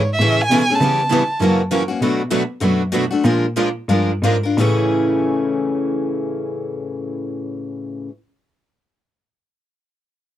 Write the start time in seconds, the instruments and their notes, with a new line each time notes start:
Already playing: cello G#2, violin C#5
0.12 violin E5
0.19 cello A2, steel-string acoustic guitar C#3 E3 G#3 A3 C#4 E4 G#4 A4
0.41 violin G#5
0.50 cello B2, steel-string acoustic guitar C#3 E3 G#3 A3 C#4 E4 G#4 A4
0.70 steel-string acoustic guitar A3 C#4 G#4
0.75 violin A5
0.80 cello C#3, steel-string acoustic guitar C#3 E3 G3 B3 C#4 E4 G4 B4
1.10 steel-string acoustic guitar C#3 E3 G3 B3 C#4 E4 G4 B4
1.39 cello F#2, steel-string acoustic guitar C#3 E3 F#3 A#3 C#4 E4 F#4 A#4
1.71 steel-string acoustic guitar C#3 E3 F#3 A#3 C#4 E4 F#4 A#4
1.88 steel-string acoustic guitar A#3 C#4 F#4
2.01 cello B2, steel-string acoustic guitar B2 F#3 A3 D4 F#4 B4
2.31 steel-string acoustic guitar B2 F#3 A3 D4 F#4 B4
2.60 cello F#2, steel-string acoustic guitar B2 F#3 A3 D4 F#4 B4
2.92 steel-string acoustic guitar B2 F#3 A3 D4 F#4 B4
3.11 steel-string acoustic guitar A3 D4 F#4
3.24 cello A#2, steel-string acoustic guitar F3 G#3 D4 F4 A#4
3.56 steel-string acoustic guitar F3 G#3 D4 F4 A#4
3.89 cello G2, steel-string acoustic guitar F3 G#3 D4 F4 A#4
4.22 cello G#2, steel-string acoustic guitar F3 G#3 D4 F4 A#4
4.43 steel-string acoustic guitar D4 F4 A#4
4.58 cello A2, steel-string acoustic guitar A2 C#3 E3 A3 C#4 E4 G#4